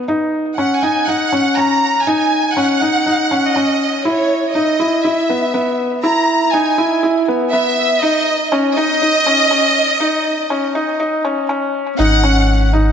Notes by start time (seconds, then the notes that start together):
0.08 D#4
0.58 C#4 F#5
0.83 D#4 G#5
1.07 D#4 F#5
1.32 C#4
1.56 C#4 A#5
2.06 D#4 G#5
2.55 C#4 F#5
2.81 D#4
3.06 D#4
3.31 C#4
3.54 C#4 D#5
4.04 E4 C#5
4.54 D#4 D#5
4.80 E4
5.04 E4 E5
5.29 B3
5.54 B3
6.03 E4 A#5
6.53 D#4 G#5
6.78 E4
7.03 E4
7.28 B3
7.52 B3 E5
8.01 D#4 D#5
8.52 C#4
8.76 D#4 D#5
9.02 D#4
9.26 C#4
9.51 C#4
10.00 D#4
10.50 C#4
10.75 D#4
11.00 D#4
11.25 C#4
11.49 C#4
11.98 G#1 D#4 F#5
12.24 C#4
12.73 D#4